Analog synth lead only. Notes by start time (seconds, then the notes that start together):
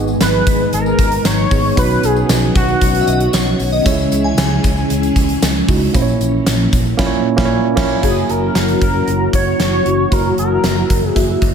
0.22 B4
0.74 A#4
1.26 C#5
1.79 B4
2.04 G#4
2.57 F#4
8.04 G#4
8.30 A#4
8.82 A#4
9.35 C#5
10.13 A#4
10.39 A#4
11.09 G#4